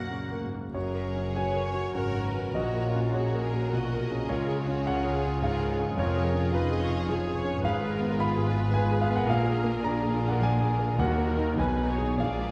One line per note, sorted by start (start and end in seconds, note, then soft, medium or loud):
0.00 0.72 F#2 soft
0.00 0.11 B2 soft
0.00 0.51 A#3 soft
0.00 0.54 A#3 soft
0.00 0.51 F#4 soft
0.00 0.76 F#4 soft
0.00 0.31 A#4 soft
0.00 0.43 A#4 soft
0.00 0.43 F#5 soft
0.11 0.43 A#2 soft
0.11 0.45 C#3 soft
0.31 0.66 A#4 soft
0.43 0.75 G#2 soft
0.54 0.75 A#3 soft
0.74 1.91 F#1 soft
0.74 1.91 F#2 soft
0.74 1.32 F#4 soft
0.74 1.91 G#4 soft
0.74 1.32 A#4 soft
0.74 1.31 C#5 medium
0.74 1.91 C#5 soft
0.94 1.27 A#4 soft
1.15 1.47 C#4 soft
1.35 1.67 F#4 soft
1.35 1.65 B4 soft
1.35 1.91 C#5 medium
1.35 1.92 C#5 soft
1.35 1.91 G#5 medium
1.54 1.86 A#4 soft
1.65 1.94 C#5 soft
1.74 2.06 F#4 soft
1.94 2.53 G#1 soft
1.94 2.53 G#2 soft
1.94 2.27 C#3 soft
1.94 2.53 F#4 soft
1.94 2.54 A#4 soft
1.94 2.54 A#4 medium
1.94 2.14 A#4 soft
1.94 2.24 C#5 soft
1.94 2.51 F#5 soft
2.15 2.47 A#4 soft
2.24 2.54 B4 soft
2.34 2.54 C#4 soft
2.54 3.69 A#1 soft
2.54 3.70 A#1 soft
2.54 3.71 A#2 soft
2.54 3.14 F#4 soft
2.54 2.83 F#4 soft
2.54 3.11 F#4 soft
2.54 3.13 A#4 soft
2.54 3.14 C#5 soft
2.54 3.10 D#5 medium
2.75 3.06 A#4 soft
2.84 3.14 F4 soft
2.94 3.26 C#4 soft
3.14 3.44 F#4 soft
3.14 3.46 F#4 soft
3.14 3.43 G#4 soft
3.14 4.27 A#4 soft
3.14 3.97 C#5 soft
3.14 3.72 C#5 soft
3.34 3.65 A#4 soft
3.44 3.73 G#4 soft
3.44 3.73 A#4 soft
3.54 3.84 F#4 soft
3.73 4.29 B1 soft
3.73 4.03 A#2 soft
3.73 4.30 B2 soft
3.73 4.30 F#4 soft
3.73 4.01 F#4 soft
3.73 4.30 D#5 soft
3.93 4.22 A#4 soft
4.02 4.30 G#4 soft
4.11 4.30 C#4 soft
4.29 5.94 C#2 soft
4.29 5.95 C#2 soft
4.29 5.95 C#3 soft
4.29 4.85 F4 soft
4.29 4.83 F4 soft
4.29 4.58 G#4 soft
4.29 4.58 A#4 soft
4.29 4.82 C#5 medium
4.29 5.98 C#5 soft
4.48 4.79 G#4 soft
4.58 4.86 F#4 soft
4.58 4.87 G#4 medium
4.67 4.98 C#4 soft
4.86 5.16 F4 soft
4.86 5.42 F4 medium
4.86 5.42 G#4 soft
4.86 5.14 A#4 medium
4.86 5.40 C#5 medium
4.86 5.39 F#5 medium
5.04 5.35 G#4 soft
5.15 5.43 G#4 soft
5.25 5.54 F4 soft
5.42 5.72 G#2 soft
5.42 5.70 F4 soft
5.42 5.70 G#4 medium
5.42 5.59 G#4 soft
5.42 5.71 A#4 medium
5.42 5.95 F5 medium
5.61 5.90 G#4 soft
5.70 5.97 F4 soft
5.70 5.98 G#4 medium
5.79 5.98 C#4 soft
5.97 7.60 F1 medium
5.97 7.59 F2 medium
5.97 7.60 F2 medium
5.97 6.52 F4 medium
5.97 6.50 F4 medium
5.97 6.26 G#4 medium
5.97 6.25 A#4 medium
5.97 6.53 C#5 medium
5.97 6.50 C#5 medium
6.16 6.46 G#4 medium
6.26 6.53 G#4 medium
6.26 6.53 A#4 medium
6.34 6.64 C#4 soft
6.52 7.33 D#4 soft
6.52 6.82 F4 medium
6.52 7.09 F4 medium
6.52 7.07 G#4 medium
6.52 6.82 B4 medium
6.52 7.33 B4 medium
6.52 7.08 D#5 medium
6.71 7.01 G#4 soft
6.81 7.09 C#5 medium
6.90 7.19 F4 soft
7.08 7.38 F3 soft
7.08 7.36 G#4 medium
7.08 7.62 G#4 medium
7.08 7.63 C#5 medium
7.28 7.56 G#4 soft
7.36 7.63 C#5 medium
7.45 7.63 C#4 soft
7.63 9.23 G#1 medium
7.63 9.23 G#2 medium
7.63 9.24 F4 medium
7.63 10.95 G#4 medium
7.63 7.80 G#4 medium
7.63 7.91 B4 medium
7.63 9.24 B4 medium
7.63 8.16 F5 medium
7.81 8.11 G#4 soft
7.91 8.19 A#4 medium
8.00 8.30 B3 medium
8.18 8.48 F4 soft
8.18 8.46 G#4 medium
8.18 8.70 F5 medium
8.18 8.70 B5 medium
8.38 8.66 G#4 medium
8.45 9.25 B4 medium
8.55 8.84 F4 medium
8.73 9.02 G#3 medium
8.73 9.00 B4 medium
8.73 8.99 G#5 medium
8.91 9.01 G#4 soft
9.01 9.14 G#4 medium
9.01 9.14 F5 medium
9.10 9.28 B3 medium
9.16 9.28 A#4 medium
9.16 9.28 F#5 medium
9.26 10.96 A#1 medium
9.26 10.95 A#2 medium
9.26 10.96 A#2 medium
9.26 10.95 D4 medium
9.26 9.82 A#4 medium
9.26 11.54 A#4 medium
9.26 9.80 F5 medium
9.31 9.44 G#4 medium
9.45 9.75 G#4 medium
9.64 9.94 A#3 soft
9.83 10.14 D4 soft
9.83 10.99 F4 medium
9.83 10.25 D5 medium
9.83 10.24 A#5 medium
10.03 10.34 G#4 medium
10.21 10.52 D4 soft
10.29 10.42 A#4 soft
10.29 10.41 F#5 medium
10.41 10.72 F3 soft
10.41 10.96 D5 medium
10.41 10.96 G#5 medium
10.61 10.91 G#4 soft
10.79 10.98 A#3 soft
10.99 11.58 D#2 medium
10.99 11.56 D#2 medium
10.99 11.54 D#3 medium
10.99 11.58 D#3 medium
10.99 11.57 D#4 soft
10.99 11.28 F#4 medium
10.99 11.54 F#4 medium
10.99 11.36 A#4 medium
10.99 11.54 F#5 medium
11.18 11.50 A#3 soft
11.28 11.58 A#4 medium
11.37 11.56 D#4 soft
11.37 11.56 A#4 soft
11.57 12.17 B1 medium
11.57 12.19 B1 medium
11.57 12.19 B2 medium
11.57 12.15 D#4 medium
11.57 12.51 G#4 soft
11.57 11.88 B4 medium
11.57 12.16 B4 soft
11.57 12.16 G#5 medium
11.77 12.10 B3 soft
11.88 12.19 C#5 medium
11.98 12.17 D#4 soft
11.98 12.17 G#4 soft
12.18 12.51 A#1 soft
12.18 12.51 A#1 medium
12.18 12.51 A#2 soft
12.18 12.51 A#3 medium
12.18 12.51 D4 soft
12.18 12.51 G#4 soft
12.18 12.51 D5 medium
12.18 12.51 F5 medium
12.39 12.51 G#3 soft